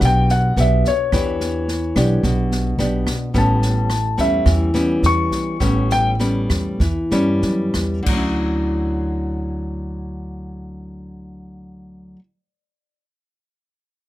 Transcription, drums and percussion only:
0.01 kick medium
0.01 cross-stick medium
0.01 snare soft
0.29 snare soft
0.57 snare soft
0.85 kick soft
0.85 snare soft
1.12 kick soft
1.12 cross-stick soft
1.12 snare soft
1.40 snare soft
1.68 snare soft
1.96 kick soft
1.96 cross-stick medium
1.96 snare soft
2.23 kick medium
2.23 snare soft
2.52 snare soft
2.79 snare soft
3.07 kick soft
3.07 cross-stick medium
3.07 snare soft
3.34 kick soft
3.34 snare soft
3.62 snare soft
3.90 cross-stick medium
3.90 snare soft
4.18 kick soft
4.18 snare soft
4.46 kick soft
4.46 cross-stick medium
4.46 snare soft
4.74 snare soft
5.03 snare soft
5.31 kick soft
5.31 snare soft
5.60 kick soft
5.60 cross-stick soft
5.60 snare soft
5.90 snare soft
6.20 snare soft
6.50 kick soft
6.50 cross-stick medium
6.50 snare soft
6.80 kick medium
6.80 snare soft
7.11 snare soft
7.42 snare soft
7.74 kick soft
7.74 cross-stick soft
7.74 snare soft
8.06 kick medium
8.06 crash soft

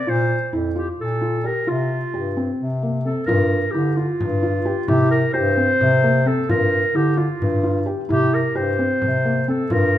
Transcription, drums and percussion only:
3.29 frame drum medium
4.21 frame drum medium
4.66 frame drum soft
4.88 frame drum medium
5.81 frame drum medium
6.26 frame drum soft
6.50 frame drum medium
7.42 frame drum soft
7.87 frame drum soft
8.10 frame drum soft
8.34 frame drum soft
8.57 frame drum soft
9.02 frame drum soft
9.70 frame drum medium

